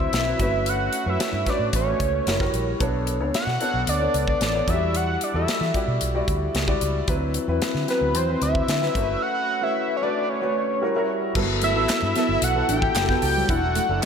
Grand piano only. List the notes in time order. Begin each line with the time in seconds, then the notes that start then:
Already playing: F#3 C4 E4 B4 D5
0.25 F#3 C4 E4 B4
0.39 A3 C#4 F#4 B4
1.06 A3 C#4 F#4 B4
1.46 A3 C#4 F#4 B4
1.86 A3 C#4 F#4 B4
2.27 G3 E4 F#4 A#4
2.40 G3 E4 F#4 A#4
2.80 B3 D4 A4 C#5
3.20 B3 D4 A4 C#5
3.60 B3 D4 A4 C#5
4.01 B3 D4 A4 C#5
4.54 B3 D4 A4 C#5
4.68 F#3 E4 F#4 D5
4.74 G3
5.34 G3 E4 F#4 A4
5.74 G3 E4 F#4 D5
6.15 G3 E4 F#4 D5
6.67 G3 E4 F#4 D5
7.08 F#3 C4 E4 B4
7.48 F#3 C4 E4 B4
7.88 F#3 C4 E4 B4
8.28 F#3 C4 E4 B4
8.81 F#3 C4 E4 B4
8.94 A3 C#4 F#4 A#4
9.02 B4
9.61 A3 C#4 F#4 B4
10.01 A3 C#4 F#4 B4
10.41 A3 C#4 F#4 B4
10.81 G3 E4 F#4 A#4
10.95 G3 E4 F#4 A#4
11.35 F#3 B3 E4 A4
11.75 F#3 B3 E4 A4
12.15 F#3 B3 E4 A4
12.55 F#3 B3 E4 A4
12.95 F#3 B3 E4 G4
13.03 A4
13.48 F#3 D4 E4 A4
13.89 F#3 D4 E4 A4